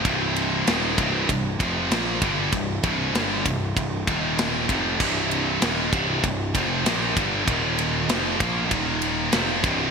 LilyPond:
<<
  \new Staff \with { instrumentName = "Distorted electric guitar" } { \clef bass \time 4/4 \key c \minor \tempo 4 = 97 <c, g, c>4 <ees, bes, ees>8 <c, g, c>8 <c, g,>8 <f, c f>8 <bes, f bes>8 <g, d g>8 | <c, g,>8 <c, g, c>8 <g, d g>8 <c, g,>8 <c, g,>8 <ees, bes, ees>4 <f, c f>8 | <c, g, c>4 <ees, bes, ees>8 <c, g, c>8 <c, g,>8 <f, c f>8 <bes, f bes>8 <g, d g>8 | <ees, bes, ees>4 <f, c f>8 <bes, f bes>8 <ees, bes, ees>4 <f, c f>8 <c, g, c>8 | }
  \new Staff \with { instrumentName = "Picked electric bass" } { \clef bass \time 4/4 \key c \minor c,,4 ees,,8 c,,8 c,,8 f,,8 bes,,8 g,,8 | c,,8 c,,8 g,,8 c,,8 c,,8 ees,,4 f,,8 | c,,4 ees,,8 c,,8 c,,8 f,,8 bes,,8 g,,8 | ees,,4 f,,8 bes,,8 ees,,4 f,,8 c,,8 | }
  \new DrumStaff \with { instrumentName = "Drums" } \drummode { \time 4/4 <bd cymr>8 cymr8 <cymr sn>8 <bd cymr>8 <bd cymr>8 <bd cymr>8 <cymr sn>8 <bd cymr>8 | <bd cymr>8 <bd cymr>8 <cymr sn>8 <bd cymr>8 <bd cymr>8 <bd cymr>8 <cymr sn>8 <bd cymr>8 | <cymc bd>8 cymr8 <cymr sn>8 <bd cymr>8 <bd cymr>8 <bd cymr>8 <cymr sn>8 <bd cymr>8 | <bd cymr>8 cymr8 <cymr sn>8 <bd cymr>8 <bd cymr>8 cymr8 <cymr sn>8 <bd cymr>8 | }
>>